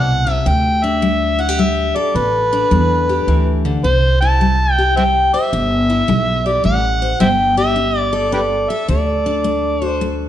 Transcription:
Already playing: C2 B2 E4 G4 F#5
0.27 C3
0.31 E5
0.46 D2 D3 G5
0.84 D4 E5
1.02 G3
1.39 E4 F#5
1.49 G4
1.59 G3 E5
1.96 A4 D5
2.15 A1 D3 B4
2.53 D4
2.71 E2 G3
3.09 G4
3.27 D2 E3
3.65 D3
3.84 C2 C3 C5
4.21 E4 A5
4.41 G3
4.73 G5
4.78 G4
4.97 G3 C5 E5 G5
5.34 C5 E5
5.53 G1 C3
5.90 E4
6.08 B1 G3
6.46 G4 D5
6.64 A1 G3 F#5
7.02 C5
7.20 G1 G3 C5 E5 G5
7.57 G4 E5
7.76 D4
7.99 D5
8.13 A4 D5
8.32 D4 G4 B4 D5
8.70 A4 E5
8.88 D2 D3 D5
9.26 D4
9.44 A3
9.82 F#4
9.86 C5
10.01 A3

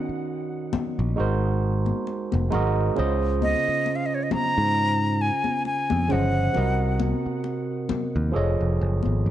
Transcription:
Already playing: D#3 C#4 D#4 F#4 D#5
0.09 muted picked electric bass stroke
0.73 muted picked electric bass stroke, muted conga, high conga, low conga
0.99 A#1
1.16 G#1 G#3 D#4 F#4 A#4
1.20 C5
1.86 high conga
2.07 muted conga
2.32 F1, high conga
2.50 G#1 G#3 D#4 F#4 A#4, muted conga, low conga
2.55 D#5
2.95 C#3 C#4 F4 C5, muted conga
2.99 C#2 D#5
3.42 D#5, high conga
3.68 muted picked electric bass stroke
3.86 muted conga
3.96 F5
4.06 D#5
4.15 C#5
4.23 D#5
4.31 A#5, muted picked electric bass stroke, high conga, low conga
4.58 G#2
5.21 G#5
5.44 high conga
5.65 G#5, muted conga
5.90 F2, high conga
6.08 C#3 F3 C#4 C5 F#5, muted conga, low conga
6.12 G1 D#5
6.53 C3 C4 F#4 A#4, muted conga, low conga
6.57 C2 D#5
7.00 muted conga, high conga
7.26 muted picked electric bass stroke
7.44 muted conga
7.89 muted picked electric bass stroke, muted conga, high conga, low conga
8.16 D#2
8.32 F3 F4 G#4 A4 C#5
8.36 F1 D#5
8.61 F1
8.81 F#1
9.03 G#1, high conga
9.26 A1

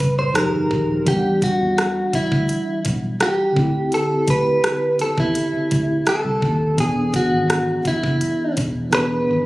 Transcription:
Already playing: A2 G3 C#4 B4
0.00 F#1, kick, closed hi-hat
0.19 C5
0.33 F1 F3 D#4 G4 A#4, cross-stick, closed hi-hat
0.37 G#4
0.53 G1
0.71 D#1, kick
1.02 E3 D4
1.06 E2 G4 F#5, kick, closed hi-hat
1.11 G3
1.42 F#4, kick, closed hi-hat
1.60 E2
1.78 cross-stick, closed hi-hat
2.13 E4, muted fingered electric bass stroke, kick, closed hi-hat
2.32 D2, kick
2.49 closed hi-hat
2.85 B1, kick, closed hi-hat
3.20 G4, cross-stick, closed hi-hat
3.52 D3 C4
3.56 D2 E4, kick
3.61 G4
3.92 A4, closed hi-hat
4.28 D2 B4, kick, closed hi-hat
4.64 cross-stick, closed hi-hat
4.99 A4, muted fingered electric bass stroke, closed hi-hat
5.18 E2 E4, kick
5.35 closed hi-hat
5.54 muted fingered electric bass stroke
5.71 D2, kick, closed hi-hat
6.07 A4, cross-stick, closed hi-hat
6.25 C2
6.42 D#2, kick
6.74 E3 B3
6.78 E1 D4 G#4, kick, closed hi-hat
7.14 F#4, kick, closed hi-hat
7.32 G#1
7.50 cross-stick, closed hi-hat
7.85 E4, muted fingered electric bass stroke, kick, closed hi-hat
8.04 F#1, kick
8.21 closed hi-hat
8.57 E1, kick, closed hi-hat
8.90 E1 E3 B3 D4 G4, cross-stick, closed hi-hat
8.95 B4
9.01 G#4
9.28 G#1

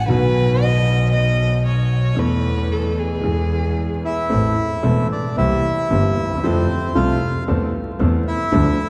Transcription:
0.06 B1 B2 D#3 F#3 B3 F#4 B4
0.62 D#5
1.12 D#5
1.67 C#5
2.15 E2 E3 A3 B3 A4
2.19 B4
2.73 A4
2.99 G#4
3.21 E2 E3 G#3 B3
3.25 G#4
4.05 E4 E5
4.30 A1 A2 E3 A3 C4 A4
4.83 E1 E2 E3 A3 C4 A4
5.12 D4 D5
5.37 C2 C3 E3 A#3 C4 E4 G4 E5
5.90 G1 G2 E3 A#3 C4 G4
6.17 D#2
6.23 D2
6.30 D#2
6.37 E2
6.43 F2 F3 A3 C4 A4 C5
6.95 C2 C3 F3 A3 C4 F4 A4 F5
7.47 E2 E3 A3 C4 A4
7.99 E2 E3 A3 C4 A4
8.28 E4 E5
8.52 D2 D3 F3 A3 D4 A4

